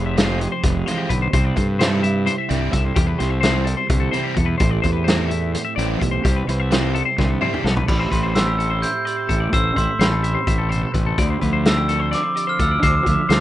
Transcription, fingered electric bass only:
0, 0, Header, 1, 2, 480
1, 0, Start_track
1, 0, Tempo, 469116
1, 1366, Time_signature, 7, 3, 24, 8
1, 13714, End_track
2, 0, Start_track
2, 0, Title_t, "Fingered electric bass"
2, 0, Program_c, 0, 33
2, 0, Note_on_c, 0, 29, 79
2, 475, Note_off_c, 0, 29, 0
2, 650, Note_on_c, 0, 29, 73
2, 831, Note_off_c, 0, 29, 0
2, 1126, Note_on_c, 0, 35, 84
2, 1307, Note_off_c, 0, 35, 0
2, 1364, Note_on_c, 0, 36, 76
2, 1546, Note_off_c, 0, 36, 0
2, 1605, Note_on_c, 0, 43, 77
2, 2329, Note_off_c, 0, 43, 0
2, 2564, Note_on_c, 0, 36, 85
2, 2744, Note_off_c, 0, 36, 0
2, 2795, Note_on_c, 0, 36, 79
2, 2978, Note_off_c, 0, 36, 0
2, 3033, Note_on_c, 0, 40, 87
2, 3216, Note_off_c, 0, 40, 0
2, 3278, Note_on_c, 0, 36, 79
2, 3822, Note_off_c, 0, 36, 0
2, 3986, Note_on_c, 0, 36, 83
2, 4171, Note_off_c, 0, 36, 0
2, 4472, Note_on_c, 0, 40, 89
2, 4654, Note_off_c, 0, 40, 0
2, 4712, Note_on_c, 0, 33, 86
2, 4893, Note_off_c, 0, 33, 0
2, 4950, Note_on_c, 0, 40, 80
2, 5676, Note_off_c, 0, 40, 0
2, 5909, Note_on_c, 0, 33, 82
2, 6091, Note_off_c, 0, 33, 0
2, 6155, Note_on_c, 0, 35, 85
2, 6334, Note_off_c, 0, 35, 0
2, 6392, Note_on_c, 0, 36, 87
2, 6572, Note_off_c, 0, 36, 0
2, 6630, Note_on_c, 0, 36, 73
2, 7174, Note_off_c, 0, 36, 0
2, 7352, Note_on_c, 0, 36, 77
2, 7532, Note_off_c, 0, 36, 0
2, 7821, Note_on_c, 0, 35, 79
2, 8005, Note_off_c, 0, 35, 0
2, 8068, Note_on_c, 0, 33, 74
2, 8250, Note_off_c, 0, 33, 0
2, 8308, Note_on_c, 0, 33, 67
2, 9037, Note_off_c, 0, 33, 0
2, 9510, Note_on_c, 0, 33, 75
2, 9693, Note_off_c, 0, 33, 0
2, 9752, Note_on_c, 0, 33, 81
2, 9934, Note_off_c, 0, 33, 0
2, 9992, Note_on_c, 0, 33, 75
2, 10084, Note_off_c, 0, 33, 0
2, 10223, Note_on_c, 0, 33, 79
2, 10592, Note_off_c, 0, 33, 0
2, 10715, Note_on_c, 0, 33, 84
2, 11080, Note_off_c, 0, 33, 0
2, 11198, Note_on_c, 0, 33, 79
2, 11380, Note_off_c, 0, 33, 0
2, 11442, Note_on_c, 0, 38, 81
2, 11623, Note_off_c, 0, 38, 0
2, 11685, Note_on_c, 0, 38, 79
2, 12414, Note_off_c, 0, 38, 0
2, 12887, Note_on_c, 0, 38, 83
2, 13069, Note_off_c, 0, 38, 0
2, 13130, Note_on_c, 0, 38, 87
2, 13311, Note_off_c, 0, 38, 0
2, 13367, Note_on_c, 0, 38, 72
2, 13458, Note_off_c, 0, 38, 0
2, 13603, Note_on_c, 0, 38, 89
2, 13714, Note_off_c, 0, 38, 0
2, 13714, End_track
0, 0, End_of_file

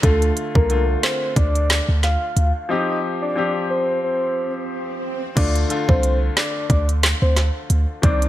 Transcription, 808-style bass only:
0, 0, Header, 1, 2, 480
1, 0, Start_track
1, 0, Tempo, 666667
1, 24, Time_signature, 4, 2, 24, 8
1, 5966, End_track
2, 0, Start_track
2, 0, Title_t, "808-style bass"
2, 0, Program_c, 0, 38
2, 24, Note_on_c, 0, 38, 107
2, 229, Note_off_c, 0, 38, 0
2, 398, Note_on_c, 0, 36, 87
2, 694, Note_off_c, 0, 36, 0
2, 982, Note_on_c, 0, 38, 93
2, 1303, Note_off_c, 0, 38, 0
2, 1358, Note_on_c, 0, 38, 87
2, 1564, Note_off_c, 0, 38, 0
2, 1704, Note_on_c, 0, 38, 95
2, 1819, Note_off_c, 0, 38, 0
2, 3864, Note_on_c, 0, 38, 109
2, 4070, Note_off_c, 0, 38, 0
2, 4239, Note_on_c, 0, 36, 98
2, 4535, Note_off_c, 0, 36, 0
2, 4822, Note_on_c, 0, 38, 94
2, 5144, Note_off_c, 0, 38, 0
2, 5199, Note_on_c, 0, 38, 92
2, 5404, Note_off_c, 0, 38, 0
2, 5545, Note_on_c, 0, 38, 93
2, 5660, Note_off_c, 0, 38, 0
2, 5784, Note_on_c, 0, 36, 104
2, 5966, Note_off_c, 0, 36, 0
2, 5966, End_track
0, 0, End_of_file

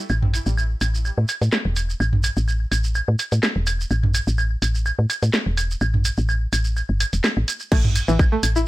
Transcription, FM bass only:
0, 0, Header, 1, 2, 480
1, 0, Start_track
1, 0, Tempo, 476190
1, 99, Time_signature, 4, 2, 24, 8
1, 8748, End_track
2, 0, Start_track
2, 0, Title_t, "FM bass"
2, 0, Program_c, 0, 39
2, 99, Note_on_c, 0, 33, 100
2, 401, Note_off_c, 0, 33, 0
2, 467, Note_on_c, 0, 33, 94
2, 761, Note_off_c, 0, 33, 0
2, 818, Note_on_c, 0, 33, 79
2, 1121, Note_off_c, 0, 33, 0
2, 1186, Note_on_c, 0, 45, 79
2, 1262, Note_off_c, 0, 45, 0
2, 1426, Note_on_c, 0, 45, 83
2, 1502, Note_off_c, 0, 45, 0
2, 1666, Note_on_c, 0, 28, 91
2, 1961, Note_off_c, 0, 28, 0
2, 2018, Note_on_c, 0, 33, 96
2, 2320, Note_off_c, 0, 33, 0
2, 2387, Note_on_c, 0, 33, 96
2, 2681, Note_off_c, 0, 33, 0
2, 2738, Note_on_c, 0, 33, 77
2, 3041, Note_off_c, 0, 33, 0
2, 3107, Note_on_c, 0, 45, 82
2, 3183, Note_off_c, 0, 45, 0
2, 3347, Note_on_c, 0, 45, 80
2, 3423, Note_off_c, 0, 45, 0
2, 3587, Note_on_c, 0, 28, 91
2, 3881, Note_off_c, 0, 28, 0
2, 3938, Note_on_c, 0, 33, 98
2, 4240, Note_off_c, 0, 33, 0
2, 4306, Note_on_c, 0, 33, 96
2, 4601, Note_off_c, 0, 33, 0
2, 4658, Note_on_c, 0, 33, 79
2, 4960, Note_off_c, 0, 33, 0
2, 5026, Note_on_c, 0, 45, 78
2, 5103, Note_off_c, 0, 45, 0
2, 5267, Note_on_c, 0, 45, 83
2, 5343, Note_off_c, 0, 45, 0
2, 5508, Note_on_c, 0, 28, 90
2, 5801, Note_off_c, 0, 28, 0
2, 5858, Note_on_c, 0, 33, 104
2, 6161, Note_off_c, 0, 33, 0
2, 6227, Note_on_c, 0, 33, 101
2, 6521, Note_off_c, 0, 33, 0
2, 6578, Note_on_c, 0, 33, 78
2, 6881, Note_off_c, 0, 33, 0
2, 6948, Note_on_c, 0, 31, 82
2, 7105, Note_off_c, 0, 31, 0
2, 7188, Note_on_c, 0, 28, 81
2, 7263, Note_off_c, 0, 28, 0
2, 7428, Note_on_c, 0, 33, 100
2, 7503, Note_off_c, 0, 33, 0
2, 7779, Note_on_c, 0, 33, 105
2, 8081, Note_off_c, 0, 33, 0
2, 8147, Note_on_c, 0, 33, 96
2, 8441, Note_off_c, 0, 33, 0
2, 8499, Note_on_c, 0, 33, 83
2, 8748, Note_off_c, 0, 33, 0
2, 8748, End_track
0, 0, End_of_file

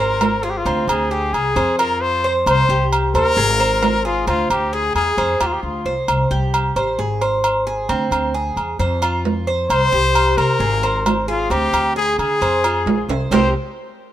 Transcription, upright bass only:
0, 0, Header, 1, 2, 480
1, 0, Start_track
1, 0, Tempo, 452148
1, 699, Time_signature, 4, 2, 24, 8
1, 14998, End_track
2, 0, Start_track
2, 0, Title_t, "Upright bass"
2, 0, Program_c, 0, 32
2, 0, Note_on_c, 0, 32, 100
2, 651, Note_off_c, 0, 32, 0
2, 695, Note_on_c, 0, 38, 116
2, 925, Note_off_c, 0, 38, 0
2, 930, Note_on_c, 0, 38, 101
2, 1390, Note_off_c, 0, 38, 0
2, 1411, Note_on_c, 0, 36, 83
2, 1643, Note_off_c, 0, 36, 0
2, 1655, Note_on_c, 0, 41, 114
2, 2575, Note_off_c, 0, 41, 0
2, 2614, Note_on_c, 0, 36, 119
2, 2845, Note_off_c, 0, 36, 0
2, 2853, Note_on_c, 0, 36, 96
2, 3313, Note_off_c, 0, 36, 0
2, 3335, Note_on_c, 0, 39, 92
2, 3565, Note_off_c, 0, 39, 0
2, 3574, Note_on_c, 0, 32, 110
2, 4494, Note_off_c, 0, 32, 0
2, 4533, Note_on_c, 0, 38, 113
2, 4764, Note_off_c, 0, 38, 0
2, 4776, Note_on_c, 0, 38, 90
2, 5233, Note_off_c, 0, 38, 0
2, 5255, Note_on_c, 0, 40, 90
2, 5485, Note_off_c, 0, 40, 0
2, 5492, Note_on_c, 0, 41, 108
2, 5724, Note_off_c, 0, 41, 0
2, 5738, Note_on_c, 0, 39, 80
2, 5955, Note_off_c, 0, 39, 0
2, 5975, Note_on_c, 0, 38, 78
2, 6193, Note_off_c, 0, 38, 0
2, 6215, Note_on_c, 0, 36, 77
2, 6433, Note_off_c, 0, 36, 0
2, 6455, Note_on_c, 0, 36, 102
2, 6685, Note_off_c, 0, 36, 0
2, 6695, Note_on_c, 0, 36, 93
2, 7152, Note_off_c, 0, 36, 0
2, 7175, Note_on_c, 0, 33, 87
2, 7404, Note_off_c, 0, 33, 0
2, 7417, Note_on_c, 0, 32, 99
2, 8334, Note_off_c, 0, 32, 0
2, 8376, Note_on_c, 0, 38, 107
2, 8604, Note_off_c, 0, 38, 0
2, 8611, Note_on_c, 0, 38, 99
2, 9070, Note_off_c, 0, 38, 0
2, 9092, Note_on_c, 0, 40, 91
2, 9322, Note_off_c, 0, 40, 0
2, 9335, Note_on_c, 0, 41, 106
2, 10253, Note_off_c, 0, 41, 0
2, 10293, Note_on_c, 0, 36, 107
2, 10522, Note_off_c, 0, 36, 0
2, 10536, Note_on_c, 0, 36, 94
2, 10992, Note_off_c, 0, 36, 0
2, 11012, Note_on_c, 0, 48, 93
2, 11242, Note_off_c, 0, 48, 0
2, 11249, Note_on_c, 0, 32, 108
2, 12170, Note_off_c, 0, 32, 0
2, 12210, Note_on_c, 0, 38, 120
2, 12440, Note_off_c, 0, 38, 0
2, 12451, Note_on_c, 0, 38, 102
2, 12909, Note_off_c, 0, 38, 0
2, 12934, Note_on_c, 0, 50, 87
2, 13163, Note_off_c, 0, 50, 0
2, 13177, Note_on_c, 0, 41, 111
2, 13633, Note_off_c, 0, 41, 0
2, 13652, Note_on_c, 0, 34, 86
2, 13870, Note_off_c, 0, 34, 0
2, 13891, Note_on_c, 0, 36, 84
2, 14110, Note_off_c, 0, 36, 0
2, 14128, Note_on_c, 0, 36, 98
2, 14355, Note_off_c, 0, 36, 0
2, 14998, End_track
0, 0, End_of_file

